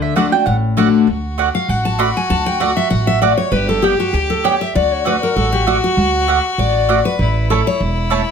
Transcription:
Already playing: upright bass D2, steel-string acoustic guitar D3
0.02 mandolin E5
0.16 steel-string acoustic guitar D3 A3 D4 F#4, mandolin A3 F#4 D5 F#5
0.32 steel-string acoustic guitar D4 F#4, mandolin G5
0.46 upright bass A1, steel-string acoustic guitar A2, mandolin F#5
0.77 steel-string acoustic guitar D3 A3 D4 F#4, mandolin A3 F#4 D5 F#5
1.07 upright bass D2, fiddle F#4
1.38 mandolin A3 F#4 D5 F#5
1.55 steel-string acoustic guitar F5
1.68 upright bass A1, steel-string acoustic guitar F#5
1.85 steel-string acoustic guitar A5
1.99 mandolin A3 F#4 D5 F#5, steel-string acoustic guitar B5
2.17 steel-string acoustic guitar G#5
2.30 upright bass D2, steel-string acoustic guitar A5
2.46 steel-string acoustic guitar G5
2.60 mandolin A3 F#4 D5 F#5, steel-string acoustic guitar F#5
2.77 steel-string acoustic guitar E5
2.90 upright bass A1, steel-string acoustic guitar F#5
3.07 steel-string acoustic guitar E5
3.22 mandolin A3 F#4 D5 F#5, steel-string acoustic guitar D5
3.37 steel-string acoustic guitar C#5
3.51 upright bass G1, fiddle G4, steel-string acoustic guitar B4
3.69 steel-string acoustic guitar A4
3.82 mandolin B3 G4 D5 G5, steel-string acoustic guitar G4
4.00 steel-string acoustic guitar F#4
4.13 upright bass D2, steel-string acoustic guitar G4
4.30 steel-string acoustic guitar A4
4.44 mandolin B3 G4 D5 G5, steel-string acoustic guitar C#5
4.61 steel-string acoustic guitar E5
4.75 upright bass D2, fiddle F#4, steel-string acoustic guitar D5
4.93 steel-string acoustic guitar C#5
5.05 mandolin A3 F#4 D5 F#5, steel-string acoustic guitar B4
5.23 steel-string acoustic guitar A#4
5.36 upright bass A1, steel-string acoustic guitar A4
5.52 steel-string acoustic guitar G4
5.67 mandolin A3 F#4 D5 F#5, steel-string acoustic guitar F#4
5.84 steel-string acoustic guitar F#4
5.97 upright bass D2
6.28 mandolin A3 F#4 D5 F#5
6.58 upright bass A1, steel-string acoustic guitar D5
6.89 mandolin A3 F#4 D5 F#5
7.05 steel-string acoustic guitar B4
7.19 upright bass A1, fiddle E4
7.50 mandolin A3 E4 C#5 A5, steel-string acoustic guitar A4
7.67 steel-string acoustic guitar C#5
7.80 upright bass E1
8.10 mandolin A3 E4 C#5 A5

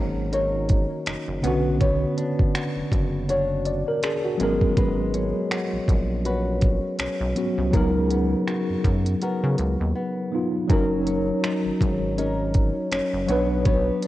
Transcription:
Already playing: analog synth bass G#1, tine electric piano D#3 A#3 C#4 F#4, nylon-string guitar F#3 D#4 A#4 C#5
0.33 nylon-string guitar D#4 A#4 C#5, closed hi-hat
0.69 kick, closed hi-hat
1.06 analog synth bass F#1, nylon-string guitar D#4, finger snap, closed hi-hat
1.28 analog synth bass F#1
1.42 analog synth bass B1, tine electric piano C#3 B3 C#4, nylon-string guitar B3, closed hi-hat
1.47 tine electric piano D3 F#4
1.80 nylon-string guitar B3 C#5, kick, closed hi-hat
2.17 nylon-string guitar D4, closed hi-hat
2.39 kick
2.54 nylon-string guitar F#4, finger snap, closed hi-hat
2.76 analog synth bass F#1
2.92 analog synth bass F#1, kick, closed hi-hat
3.29 nylon-string guitar D4 F#4 C#5, closed hi-hat
3.65 tine electric piano D5, closed hi-hat
3.88 tine electric piano A#4
4.03 nylon-string guitar D4, tine electric piano G#4, finger snap, closed hi-hat
4.25 tine electric piano F#4
4.37 analog synth bass G#1, tine electric piano F#3 B3 C#4, nylon-string guitar G#3, closed hi-hat
4.43 tine electric piano A#4
4.61 kick
4.77 nylon-string guitar G#3 B4, kick, closed hi-hat
5.14 nylon-string guitar C#4, closed hi-hat
5.51 nylon-string guitar F#4, finger snap, closed hi-hat
5.73 analog synth bass A#1
5.88 analog synth bass A#1, kick, closed hi-hat
6.25 nylon-string guitar C#4 F#4 B4, closed hi-hat
6.62 kick, closed hi-hat
6.99 analog synth bass B1, nylon-string guitar C#4, finger snap, closed hi-hat
7.21 analog synth bass B1
7.35 tine electric piano F#3 B3 C#4 F#4, closed hi-hat
7.58 analog synth bass C2
7.71 analog synth bass C#2, nylon-string guitar C#3 A#4, tine electric piano F#3 B3 D#4, kick, closed hi-hat
7.77 tine electric piano A#4
8.10 nylon-string guitar B3, closed hi-hat
8.47 nylon-string guitar F#4, finger snap, closed hi-hat
8.70 analog synth bass F#2
8.84 analog synth bass F#2, kick, closed hi-hat
9.06 closed hi-hat
9.21 nylon-string guitar B3 F#4 A#4, closed hi-hat
9.44 analog synth bass C#3
9.58 analog synth bass C#2, closed hi-hat
9.81 analog synth bass D#2
9.95 nylon-string guitar B3
10.32 tine electric piano F#3 B3 D#4 F4
10.68 analog synth bass F#1, tine electric piano F#3 C#4 D#4, nylon-string guitar F#3 A#4, kick, closed hi-hat
10.73 tine electric piano A#4
11.07 nylon-string guitar C#4, closed hi-hat
11.44 nylon-string guitar D#4, finger snap, closed hi-hat
11.65 analog synth bass G#1
11.81 analog synth bass G#1, kick, closed hi-hat
12.18 nylon-string guitar C#4 D#4 A#4, closed hi-hat
12.54 kick, closed hi-hat
12.92 analog synth bass F#1, nylon-string guitar C#4, finger snap, closed hi-hat
13.14 analog synth bass F#1
13.27 analog synth bass B1, tine electric piano F#3 D4 C#5, nylon-string guitar B3, closed hi-hat
13.32 tine electric piano B4
13.65 nylon-string guitar B3 C#5, kick, closed hi-hat
14.03 nylon-string guitar D4, closed hi-hat

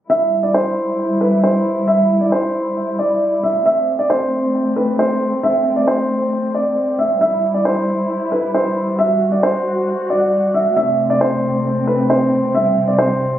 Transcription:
0.10 string section G3 E4, felt piano E5
0.43 felt piano D5
0.54 felt piano C5
1.21 felt piano B4
1.44 felt piano C5
1.88 felt piano E5
2.21 felt piano D5
2.32 felt piano C5
2.99 felt piano D5
3.43 felt piano E5
3.65 string section A3 C4, felt piano E5
3.99 felt piano D5
4.10 felt piano C5
4.76 felt piano B4
4.99 felt piano C5
5.43 felt piano E5
5.76 felt piano D5
5.88 felt piano C5
6.55 felt piano D5
6.99 felt piano E5
7.21 string section G3 E4, felt piano E5
7.54 felt piano D5
7.65 felt piano C5
8.32 felt piano B4
8.54 felt piano C5
8.99 string section F#4, felt piano E5
9.32 felt piano D5
9.43 felt piano C5
10.10 felt piano D5
10.54 felt piano E5
10.76 string section C3 A3 C4, felt piano E5
11.10 felt piano D5
11.21 felt piano C5
11.87 felt piano B4
12.10 felt piano C5
12.54 string section G3, felt piano E5
12.88 felt piano D5
12.99 felt piano C5

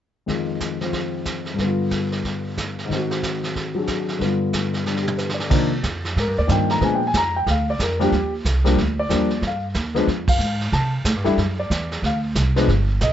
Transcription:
0.26 grand piano F2 D#3 G#3 F4, brush sweep, kick, snare
0.60 kick, snare, hi-hat pedal
0.81 grand piano F3 C4 F4, snare
0.93 brush sweep, kick, snare
1.25 kick, snare, hi-hat pedal
1.45 snare
1.54 grand piano G2 D3
1.58 grand piano B3, brush sweep, kick, snare
1.65 grand piano F4
1.91 kick, snare, hi-hat pedal
2.12 snare
2.24 brush sweep, kick, snare
2.57 kick, snare, hi-hat pedal
2.79 snare
2.85 grand piano G#2 D#3
2.90 grand piano C4, brush sweep, kick, snare
2.96 grand piano F#4
3.11 snare
3.23 kick, snare, hi-hat pedal
3.43 snare
3.56 brush sweep, kick, snare
3.75 grand piano F#3 D4 G#4
3.87 kick, snare, hi-hat pedal
4.08 snare
4.19 grand piano G2 D3 B3, brush sweep, kick, snare
4.24 grand piano F4
4.53 kick, snare, hi-hat pedal
4.73 snare
4.85 grand piano D3 G3 D4, snare
4.96 snare
5.02 grand piano G4
5.08 mid tom
5.18 grand piano B4, snare, hi-hat pedal
5.29 snare
5.34 grand piano D5
5.40 snare
5.50 upright bass C3, grand piano D#3 F3 A#3 D4, brush sweep, kick, snare, crash
5.83 upright bass F2, kick, snare, hi-hat pedal
6.05 snare
6.16 upright bass G#2, grand piano A#4, brush sweep, kick, snare
6.27 upright bass G2
6.38 upright bass D#2, grand piano D5
6.47 upright bass G2, grand piano D#3 F3 A#3 D4, kick, snare, hi-hat pedal
6.51 grand piano G5
6.70 grand piano A#5, snare
6.81 upright bass A#2, grand piano F3 G#3 B3 D4 G#5, brush sweep, kick, snare
6.95 grand piano G5
7.07 grand piano G#5
7.14 upright bass F2, grand piano A#5, kick, snare, hi-hat pedal
7.36 grand piano G5
7.47 upright bass D2, brush sweep, kick, snare
7.51 grand piano F5
7.70 grand piano D5
7.79 upright bass F2, grand piano A#4, kick, snare, hi-hat pedal
7.99 grand piano F3 G3 A#3 D4 G4, snare
8.12 upright bass D#2, brush sweep, kick, snare
8.45 upright bass C2, kick, snare, hi-hat pedal
8.64 grand piano F3 G3 A#3 D4, snare
8.77 upright bass D2, brush sweep, kick, snare
8.99 grand piano D5
9.09 upright bass D#2, grand piano F3 G3 A#3 D4, kick, snare, hi-hat pedal
9.30 snare
9.42 upright bass G2, brush sweep, kick, snare
9.47 grand piano F5
9.74 upright bass D#2, kick, snare, hi-hat pedal
9.95 grand piano F3 G#3 B3 D4, snare
10.07 upright bass F2, brush sweep, kick, snare
10.28 grand piano F5, kick, ride
10.39 upright bass G#2, hi-hat pedal
10.61 snare
10.72 upright bass C3, grand piano A5, brush sweep, kick, snare
11.05 upright bass A2, kick, snare, hi-hat pedal
11.15 upright bass G2
11.24 upright bass E2, grand piano G3 A3 D4 E4, snare
11.37 upright bass F#2, brush sweep, kick, snare
11.60 grand piano D5
11.70 upright bass E2, kick, snare, hi-hat pedal
11.92 snare
12.02 upright bass D2, grand piano F5, brush sweep, kick, snare
12.35 upright bass C2, kick, snare, hi-hat pedal
12.56 grand piano F3 G#3 B3 D4, snare
12.68 upright bass G1, brush sweep, kick, snare
13.01 upright bass B1, grand piano D#5, kick, snare, hi-hat pedal

